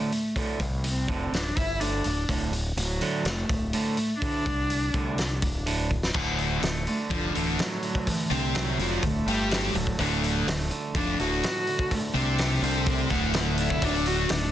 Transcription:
Already playing: clean electric guitar D2 A2 D3, cello A3
0.12 clean electric guitar D2 A2, open hi-hat
0.36 clean electric guitar D2 A2 D3, kick, open hi-hat
0.60 fingered electric bass C2, clean electric guitar D2 A2, kick, open hi-hat
0.84 clean electric guitar D2 A2, open hi-hat
0.89 cello C4
1.08 fingered electric bass F1, clean electric guitar D2 A2 D3, kick, open hi-hat
1.32 fingered electric bass D1, clean electric guitar D2 A2, cello D4, snare, open hi-hat
1.56 fingered electric bass G1, clean electric guitar D2 A2, cello E4, kick, open hi-hat
1.80 clean electric guitar D2 A2 D3, cello D4, open hi-hat
2.04 fingered electric bass D1, clean electric guitar D2 A2, open hi-hat
2.29 fingered electric bass D1, clean electric guitar D2 A2 D3, kick, open hi-hat
2.53 clean electric guitar D2 A2, open hi-hat
2.76 fingered electric bass D1, clean electric guitar D2 A2, cello F#3, open hi-hat
3.01 clean electric guitar D2 A2 D3, open hi-hat
3.25 fingered electric bass F1, cello A3, snare, open hi-hat
3.49 fingered electric bass D1, clean electric guitar D2 A2, kick, open hi-hat
3.71 clean electric guitar D2 A2 D3, cello A3, open hi-hat
3.97 clean electric guitar D2 A2, open hi-hat
4.18 cello D4, kick, open hi-hat
4.22 clean electric guitar D2 A2 D3
4.46 fingered electric bass C2, clean electric guitar D2 A2, kick, open hi-hat
4.70 clean electric guitar D2 A2, open hi-hat
4.94 fingered electric bass C2, clean electric guitar D2 A2 D3, kick, open hi-hat
5.18 clean electric guitar D2, snare, open hi-hat
5.42 fingered electric bass D1, clean electric guitar D2 A2, kick, open hi-hat
5.66 clean electric guitar D2 A2 D3, open hi-hat
5.91 clean electric guitar D2 A2, kick
6.03 snare
6.14 fingered electric bass D1, overdriven electric guitar D2 D3, clean electric guitar D2, kick, crash
6.38 open hi-hat
6.61 fingered electric bass D1, overdriven electric guitar D2, clean electric guitar A3, snare, open hi-hat
6.87 clean electric guitar D3, cello A3, open hi-hat
7.10 fingered electric bass F1, overdriven electric guitar F2 F3, clean electric guitar A2, cello D3, kick, open hi-hat
7.34 fingered electric bass D1, overdriven electric guitar D2 D3, cello E3, clean electric guitar A3, open hi-hat
7.59 clean electric guitar A2, cello F#3, snare, open hi-hat
7.83 clean electric guitar D3, open hi-hat
7.95 kick
8.07 clean electric guitar D2, cello E3, kick, open hi-hat
8.30 fingered electric bass C2, overdriven electric guitar C3 C4, cello D3, open hi-hat
8.55 cello F#3, clean electric guitar A3, snare, open hi-hat
8.78 fingered electric bass F1, overdriven electric guitar F2 F3, clean electric guitar D3, open hi-hat
9.03 fingered electric bass D1, overdriven electric guitar D2, clean electric guitar A2, cello A3, kick, open hi-hat
9.26 fingered electric bass G1, overdriven electric guitar G2 G3, clean electric guitar A3, open hi-hat
9.51 clean electric guitar A2, cello F#3, snare, open hi-hat
9.74 fingered electric bass D1, overdriven electric guitar D2, clean electric guitar D3, open hi-hat
9.87 kick
9.98 fingered electric bass D1, clean electric guitar D2, overdriven electric guitar D2 D3, kick, open hi-hat
10.24 open hi-hat
10.47 fingered electric bass D1, overdriven electric guitar D2, clean electric guitar A3, snare, open hi-hat
10.71 clean electric guitar D3, open hi-hat
10.95 fingered electric bass F1, overdriven electric guitar F2 F3, clean electric guitar A2, cello D4, kick, open hi-hat
11.19 fingered electric bass D1, overdriven electric guitar D2 D3, clean electric guitar A3, cello F#4, open hi-hat
11.43 clean electric guitar A2, snare, open hi-hat
11.67 clean electric guitar D3, open hi-hat
11.79 kick
11.91 clean electric guitar D2, cello A3, kick, open hi-hat
12.14 fingered electric bass C2, overdriven electric guitar C3 C4, cello D4, open hi-hat
12.38 clean electric guitar A3, snare, open hi-hat
12.62 fingered electric bass C2, overdriven electric guitar C3 C4, clean electric guitar D3, open hi-hat
12.86 clean electric guitar A2, kick, open hi-hat
13.10 fingered electric bass D1, overdriven electric guitar D2 D3, clean electric guitar A3, kick, open hi-hat
13.34 clean electric guitar A2, snare, open hi-hat
13.38 cello A3
13.58 clean electric guitar D3, cello E4, open hi-hat
13.70 kick
13.82 fingered electric bass D1, overdriven electric guitar D2 D3, clean electric guitar D2, cello D4, kick, open hi-hat
14.06 cello F#4, open hi-hat
14.29 fingered electric bass D1, overdriven electric guitar D2, clean electric guitar A3, cello D4, snare, open hi-hat

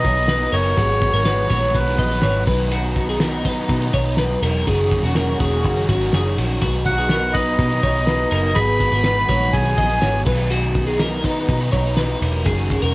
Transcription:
Already playing: overdriven electric guitar B2 D#3 F#3 B3 D#4 B4, string section F#3 B3 D#4, melodica D#5
0.04 picked electric bass B1, clean electric guitar C#5, kick, snare, ride
0.16 overdriven electric guitar F#3 B3 D#4 B4
0.28 clean electric guitar B4, snare, ride
0.52 picked electric bass F#1, clean electric guitar A#4, melodica C#5, open hi-hat, ride
0.75 picked electric bass G#1, overdriven electric guitar G#2 D#3 F#3 B3 D#4 B4, string section D#3 G#3 F#4, clean electric guitar G#4, kick, hi-hat pedal, ride
1.02 kick, ride
1.13 picked electric bass G#1, overdriven electric guitar F#3 B3 D#4 B4, clean electric guitar A#4
1.25 clean electric guitar B4, snare, ride
1.50 picked electric bass A#1, overdriven electric guitar F#3 B3 D#4 B4, clean electric guitar C#5, kick, ride
1.75 picked electric bass B1, melodica B4, kick, ride
1.87 overdriven electric guitar G#2 D#3 F#3 B3 D#4 B4
1.98 picked electric bass A#1, clean electric guitar D#5, kick, snare, ride
2.11 overdriven electric guitar F#3 B3 D#4 B4
2.22 picked electric bass G#1, clean electric guitar C#5, snare, ride
2.47 picked electric bass B1, overdriven electric guitar B2 D#3 F#3 B3 D#4 B4, string section B3 D#4, clean electric guitar B4, kick, open hi-hat, ride
2.72 clean electric guitar F#4, hi-hat pedal, ride
2.96 kick, ride
3.09 overdriven electric guitar F#3 B3 D#4 B4, clean electric guitar G#4
3.20 clean electric guitar A#4, snare, ride
3.45 overdriven electric guitar F#3 B3 D#4 B4, clean electric guitar B4, kick, ride
3.69 picked electric bass B2, kick, ride
3.82 overdriven electric guitar B2 D#3 F#3 B3 D#4 B4
3.93 picked electric bass B1, clean electric guitar C#5, kick, snare, ride
4.06 overdriven electric guitar F#3 B3 D#4 B4
4.17 clean electric guitar B4, snare, ride
4.42 picked electric bass E1, clean electric guitar A#4, open hi-hat, ride
4.66 picked electric bass F#1, string section D#3 A#3 C#4 F#4, overdriven electric guitar F#3 C#4 D#4 A#4, clean electric guitar G#4, kick, hi-hat pedal, ride
4.91 kick, ride
5.03 picked electric bass E1, overdriven electric guitar C#4 D#4 A#4, clean electric guitar F#4
5.15 clean electric guitar A#4, snare, ride
5.39 picked electric bass E1, overdriven electric guitar F#3 C#4 D#4 A#4, clean electric guitar G#4, kick, ride
5.65 picked electric bass F#1, kick, ride
5.76 overdriven electric guitar F#3 C#4 D#4 A#4
5.89 picked electric bass G#1, clean electric guitar F#4, kick, ride
6.01 overdriven electric guitar C#4 D#4 A#4
6.13 picked electric bass F#1, clean electric guitar G#4, snare, ride
6.37 picked electric bass A#1, clean electric guitar F#4, open hi-hat, ride
6.61 picked electric bass B1, overdriven electric guitar B2 D#3 F#3 B3 D#4 B4, string section B3 D#4, clean electric guitar F#4, kick, hi-hat pedal, ride
6.85 violin section F#4, melodica F#5, kick, ride
6.98 overdriven electric guitar F#3 B3 D#4 B4, clean electric guitar G#4
7.09 clean electric guitar A#4, snare, ride
7.33 overdriven electric guitar F#3 B3 D#4, violin section D#4, clean electric guitar B4, melodica D#5, kick, ride
7.37 overdriven electric guitar B4
7.59 picked electric bass B2, kick, ride
7.72 overdriven electric guitar B2 D#3 F#3 B3 D#4 B4
7.83 picked electric bass B1, clean electric guitar C#5, kick, snare, ride
7.96 overdriven electric guitar F#3 B3 D#4 B4
8.07 clean electric guitar B4, snare, ride
8.31 picked electric bass F#1, clean electric guitar A#4, open hi-hat, ride
8.55 picked electric bass G#1, overdriven electric guitar G#2 D#3 F#3 B3 D#4 B4, string section D#3 G#3 B3 F#4, clean electric guitar G#4, violin section B4, melodica B5, kick, hi-hat pedal, ride
8.80 kick, ride
8.92 picked electric bass G#1, overdriven electric guitar F#3 B3 D#4 B4, clean electric guitar A#4
9.04 clean electric guitar B4, snare, ride
9.29 picked electric bass A#1, overdriven electric guitar F#3 B3 D#4 B4, clean electric guitar C#5, kick, ride
9.53 picked electric bass B1, violin section G#4, melodica G#5, kick, ride
9.65 overdriven electric guitar G#2 D#3 F#3 B3 D#4 B4
9.78 picked electric bass A#1, clean electric guitar D#5, kick, snare, ride
9.89 overdriven electric guitar F#3 B3 D#4 B4
10.01 picked electric bass G#1, clean electric guitar C#5, snare, ride
10.26 picked electric bass B1, overdriven electric guitar B2 D#3 F#3 B3 D#4 B4, string section B3 D#4, clean electric guitar B4, kick, crash
10.50 clean electric guitar F#4, hi-hat pedal, ride
10.75 kick, ride
10.86 overdriven electric guitar F#3 B3 D#4 B4, clean electric guitar G#4
10.99 clean electric guitar A#4, snare, ride
11.24 overdriven electric guitar F#3 B3 D#4 B4, clean electric guitar B4, kick, ride
11.49 picked electric bass B2, kick, ride
11.60 overdriven electric guitar B2 D#3 F#3 B3 D#4 B4
11.72 picked electric bass B1, clean electric guitar C#5, kick, snare, ride
11.85 overdriven electric guitar F#3 B3 D#4 B4
11.97 clean electric guitar B4, snare, ride
12.21 picked electric bass E1, clean electric guitar A#4, open hi-hat, ride
12.44 picked electric bass F#1, string section D#3 F#3 A#3 C#4 F#4, overdriven electric guitar F#3 C#4 D#4 A#4, clean electric guitar G#4, kick, hi-hat pedal, ride
12.70 kick, ride
12.82 picked electric bass E1, overdriven electric guitar C#4 D#4 A#4, clean electric guitar A#4

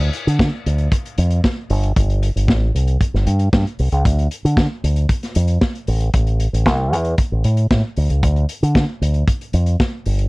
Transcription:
0.01 closed hi-hat
0.13 closed hi-hat
0.27 fingered electric bass D3, closed hi-hat
0.39 kick, snare
0.66 fingered electric bass D2, closed hi-hat
0.78 closed hi-hat
0.92 kick, closed hi-hat
1.06 closed hi-hat
1.18 fingered electric bass F2, closed hi-hat
1.30 closed hi-hat
1.44 kick, snare
1.70 fingered electric bass G1, open hi-hat
1.83 closed hi-hat
1.96 fingered electric bass G1, kick, closed hi-hat
2.10 closed hi-hat
2.23 closed hi-hat
2.36 fingered electric bass G1, closed hi-hat
2.48 fingered electric bass A1, kick, snare
2.75 fingered electric bass C2, closed hi-hat
2.87 closed hi-hat
3.01 kick, closed hi-hat
3.14 fingered electric bass G1, snare
3.27 fingered electric bass G2, closed hi-hat
3.39 closed hi-hat
3.53 fingered electric bass G2, kick, snare
3.67 closed hi-hat
3.79 fingered electric bass C2, open hi-hat
3.92 fingered electric bass C#2, closed hi-hat
4.05 fingered electric bass D2, kick, closed hi-hat
4.19 closed hi-hat
4.31 closed hi-hat
4.45 fingered electric bass D3, closed hi-hat
4.57 kick, snare
4.84 fingered electric bass D2, closed hi-hat
4.96 closed hi-hat
5.09 kick, closed hi-hat
5.23 snare, closed hi-hat
5.35 fingered electric bass F2, closed hi-hat
5.48 closed hi-hat
5.61 kick, snare
5.75 closed hi-hat
5.87 fingered electric bass A1, open hi-hat
6.00 closed hi-hat
6.14 fingered electric bass A1, kick, closed hi-hat
6.27 closed hi-hat
6.40 closed hi-hat
6.53 fingered electric bass A1, closed hi-hat
6.66 fingered electric bass C2, kick, snare
6.93 fingered electric bass E2, closed hi-hat
7.04 closed hi-hat
7.18 kick, closed hi-hat
7.32 fingered electric bass A1
7.44 fingered electric bass A2, closed hi-hat
7.57 closed hi-hat
7.71 fingered electric bass A2, kick, snare
7.96 fingered electric bass D2, open hi-hat
8.10 fingered electric bass C#2, closed hi-hat
8.23 fingered electric bass D2, kick, closed hi-hat
8.36 closed hi-hat
8.49 closed hi-hat
8.63 fingered electric bass D3, closed hi-hat
8.75 kick, snare
9.01 fingered electric bass D2, closed hi-hat
9.14 closed hi-hat
9.28 kick, closed hi-hat
9.41 closed hi-hat
9.53 fingered electric bass F2, closed hi-hat
9.66 closed hi-hat
9.80 kick, snare
10.06 fingered electric bass G1, open hi-hat
10.19 closed hi-hat

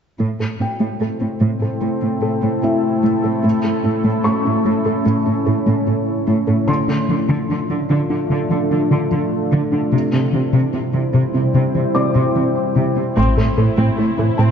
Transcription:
0.19 cello section A2, ambient pad A3 C4 E4 A4, synth arpeggio sound A3
0.40 cello section A2, synth arpeggio sound A4
0.59 cello section A2, synth arpeggio sound C4, felt piano G5
0.80 cello section A2, synth arpeggio sound A3
1.00 cello section A2, synth arpeggio sound A4
1.21 cello section A2, synth arpeggio sound C4
1.40 cello section A2, synth arpeggio sound A3
1.61 cello section A2, synth arpeggio sound A4
1.81 cello section A2, synth arpeggio sound A3
2.01 cello section A2, synth arpeggio sound C4
2.22 cello section A2, synth arpeggio sound A4
2.42 cello section A2, synth arpeggio sound A3
2.62 cello section A2, synth arpeggio sound C4, felt piano E4 E5
3.03 cello section A2, synth arpeggio sound A3
3.24 cello section A2, synth arpeggio sound A4
3.43 cello section A2, synth arpeggio sound A3, ambient pad C#4
3.64 cello section A2, synth arpeggio sound A4
3.84 cello section A2, synth arpeggio sound C#4
4.04 cello section A2, synth arpeggio sound A3
4.24 cello section A2, synth arpeggio sound A4, felt piano C#6
4.45 cello section A2, synth arpeggio sound C#4
4.65 cello section A2, synth arpeggio sound A3
4.86 cello section A2, synth arpeggio sound A4
5.06 cello section A2, synth arpeggio sound A3
5.26 cello section A2, synth arpeggio sound C#4
5.46 cello section A2, synth arpeggio sound A4
5.66 cello section A2, synth arpeggio sound A3
5.87 cello section A2, synth arpeggio sound C#4
6.27 cello section A2, synth arpeggio sound A3
6.47 cello section A2, synth arpeggio sound A4
6.68 cello section D3, synth arpeggio sound D3, ambient pad A3 D4 F4 A4, felt piano C6
6.88 cello section D3, synth arpeggio sound D4
7.09 cello section D3, synth arpeggio sound F3
7.29 synth arpeggio sound D3, cello section D3
7.49 cello section D3, synth arpeggio sound D4
7.70 cello section D3, synth arpeggio sound F3
7.90 synth arpeggio sound D3, cello section D3
8.10 cello section D3, synth arpeggio sound D4
8.30 synth arpeggio sound D3, cello section D3
8.50 cello section D3, synth arpeggio sound F3
8.70 cello section D3, synth arpeggio sound D4
8.91 synth arpeggio sound D3, cello section D3
9.11 cello section D3, synth arpeggio sound F3
9.52 synth arpeggio sound D3, cello section D3
9.72 cello section D3, synth arpeggio sound D4
9.92 synth arpeggio sound C3, cello section C3, ambient pad G3 C4 E4 C5
10.12 cello section C3, synth arpeggio sound C4
10.33 cello section C3, synth arpeggio sound E3
10.53 synth arpeggio sound C3, cello section C3
10.73 cello section C3, synth arpeggio sound C4
10.93 cello section C3, synth arpeggio sound E3
11.14 cello section C3, synth arpeggio sound C3
11.34 cello section C3, synth arpeggio sound C4
11.54 synth arpeggio sound C3, cello section C3
11.75 cello section C3, synth arpeggio sound E3
11.95 cello section C3, synth arpeggio sound C4, felt piano D5 D6
12.15 cello section C3, synth arpeggio sound C3
12.36 cello section C3, synth arpeggio sound E3
12.76 synth arpeggio sound C3, cello section C3
12.96 cello section C3, synth arpeggio sound C4
13.16 analog synth bass A2, cello section A2, synth arpeggio sound A3, ambient pad A3 C4 E4 A4, viola section C4 E4, felt piano C5 C6, taiko
13.37 analog synth bass A2, cello section A2, viola section A3, synth arpeggio sound A4
13.57 analog synth bass A2, cello section A2, viola section E3, synth arpeggio sound A4
13.77 cello section A2, analog synth bass A2, synth arpeggio sound A3, viola section C4
13.97 cello section A2, viola section A3, analog synth bass A3, synth arpeggio sound E4
14.18 cello section A2, analog synth bass A2, viola section E3, synth arpeggio sound A4
14.37 analog synth bass A2, cello section A2, synth arpeggio sound A3, viola section C4, felt piano A5

